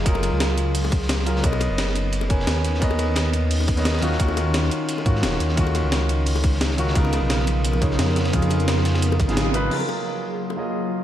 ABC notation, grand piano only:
X:1
M:4/4
L:1/16
Q:"Swing 16ths" 1/4=174
K:Gb
V:1 name="Grand piano"
[G,FAB]12- [G,FAB]2 [G,FAB]2 | [=B,^A^c^d]8- [B,Acd]2 [B,Ac_a] z4 z | [=B,^A^c^d]8- [B,Acd]3 [B,Acd]3 [E,_DFG]2 | [E,DFG]8- [E,DFG]2 [E,DFG] z4 z |
[E,DFG]12- [E,DFG]2 [E,DFG]2 | [D,CEFB]8- [D,CEFB]2 [D,CEFd] z4 z | [D,CEFA]8- [D,CEFA]3 [D,CEFA]3 [D,CEFc]2 | [G,FAB]8- [G,FAB]2 [G,FAe] z4 z |]